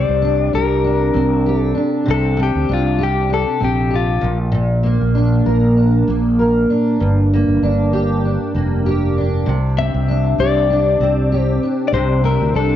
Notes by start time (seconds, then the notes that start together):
Already playing: C3 G3 C4 G4 D5
0.09 C2
0.22 D4
0.53 C2 G4 A#4
0.84 D4
1.14 C2 C4
1.46 G4
1.57 A4
1.75 D4
2.05 C2 C3
2.11 A4
2.37 C4
2.43 G4
2.55 D2
2.69 C2 D4
2.74 F4
2.98 G4
3.04 G4
3.30 D4 A4
3.60 A#1 C4
3.65 G4
3.90 G4
3.96 F4
4.21 A#1 A#2
4.52 A#2
4.83 A#3
5.02 A#1
5.15 D4
5.46 A#1 A#4
5.77 D4
6.08 A#1 A#3
6.39 A#4
6.70 D4
7.00 G1 G2
7.34 A#3
7.48 G1
7.63 G1 D4
7.93 G4
8.25 D4
8.55 F1 A#3
8.86 G4
9.18 D4
9.46 C2 C3
9.78 C4 E5
9.94 C2
10.08 D4
10.38 C2 G4 D5
10.70 D4
11.00 C2 C4
11.32 G4
11.41 C5
11.63 D4
11.88 D5
11.93 C2 C3 C5
12.24 C4 A#4
12.41 D2
12.54 C2 D4 A4